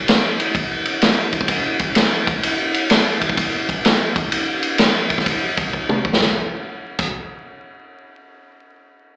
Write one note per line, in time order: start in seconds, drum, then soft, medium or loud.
0.08 snare loud
0.08 ride medium
0.40 ride medium
0.55 kick loud
0.55 ride medium
0.85 ride medium
1.01 snare loud
1.01 ride medium
1.32 kick medium
1.32 ride medium
1.41 kick medium
1.48 kick medium
1.48 ride loud
1.79 kick medium
1.79 ride medium
1.95 snare loud
1.95 ride medium
2.27 kick loud
2.27 ride medium
2.43 ride loud
2.74 ride medium
2.90 snare loud
2.90 ride medium
3.21 kick medium
3.21 ride medium
3.29 kick medium
3.37 kick loud
3.37 ride medium
3.69 kick medium
3.69 ride medium
3.85 snare loud
3.85 ride medium
4.16 kick loud
4.16 ride medium
4.32 ride medium
4.62 ride medium
4.78 snare loud
4.78 ride medium
5.10 kick medium
5.10 ride medium
5.18 kick medium
5.18 snare soft
5.26 kick loud
5.26 ride medium
5.57 kick medium
5.57 ride medium
5.73 kick medium
5.89 mid tom medium
6.05 kick medium
6.13 snare medium
6.21 kick loud
6.21 snare medium
6.99 kick loud
6.99 crash medium